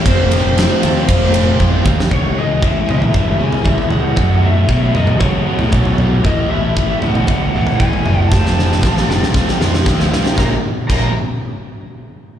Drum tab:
CC |----------------|----------------|----------------|----------------|
RD |x-x-x-x-x-x-----|----------------|----------------|----------------|
SD |----o----------o|----------------|----------------|----------------|
T2 |----------------|-------o----o---|-------o----o---|-------o----o---|
FT |----------------|o-----ooo--o-oo-|o-----ooo--o-oo-|o-----ooo--o-oo-|
BD |o-------o---o-o-|o---o---o---o---|o---o---o---o---|o---o---o---o---|

CC |----------------|----x-----------|
RD |----------------|----------------|
SD |oooooooooooooooo|o---------------|
T2 |----------------|----------------|
FT |----------------|----------------|
BD |o---o---o---o---|o---o-----------|